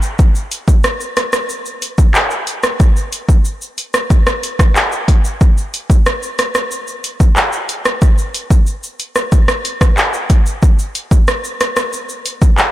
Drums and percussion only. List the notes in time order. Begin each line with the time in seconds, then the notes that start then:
0.02 shaker
0.19 kick, shaker
0.35 shaker
0.52 closed hi-hat, shaker
0.68 kick, shaker
0.84 cross-stick, shaker
1.01 shaker
1.17 cross-stick, closed hi-hat, shaker
1.33 cross-stick, shaker
1.49 shaker
1.66 shaker
1.82 closed hi-hat, shaker
1.98 kick, shaker
2.15 clap, shaker
2.31 shaker
2.47 closed hi-hat, shaker
2.63 cross-stick, shaker
2.80 kick, shaker
2.96 shaker
3.12 closed hi-hat, shaker
3.29 kick, shaker
3.45 shaker
3.62 shaker
3.78 closed hi-hat, shaker
3.94 cross-stick, shaker
4.10 kick, shaker
4.27 cross-stick, shaker
4.43 closed hi-hat, shaker
4.59 kick, cross-stick, shaker
4.76 clap, shaker
4.92 shaker
5.08 kick, closed hi-hat, shaker
5.25 shaker
5.41 kick, shaker
5.58 shaker
5.74 closed hi-hat, shaker
5.90 kick, shaker
6.06 cross-stick, shaker
6.23 shaker
6.39 cross-stick, closed hi-hat, shaker
6.55 cross-stick, shaker
6.71 shaker
6.88 shaker
7.04 closed hi-hat, shaker
7.20 kick, shaker
7.36 clap, shaker
7.53 shaker
7.69 closed hi-hat, shaker
7.85 cross-stick, shaker
8.02 kick, shaker
8.18 shaker
8.34 closed hi-hat, shaker
8.50 kick, shaker
8.67 shaker
8.83 shaker
9.00 closed hi-hat, shaker
9.15 cross-stick, shaker
9.32 kick, shaker
9.48 cross-stick, shaker
9.65 closed hi-hat, shaker
9.81 kick, cross-stick, shaker
9.98 clap, shaker
10.14 shaker
10.30 kick, closed hi-hat, shaker
10.46 shaker
10.63 kick, shaker
10.79 shaker
10.95 closed hi-hat, shaker
11.11 kick, shaker
11.28 cross-stick, shaker
11.44 shaker
11.61 cross-stick, closed hi-hat, shaker
11.76 cross-stick, shaker
11.93 shaker
12.09 shaker
12.26 closed hi-hat, shaker
12.42 kick, shaker
12.58 clap, shaker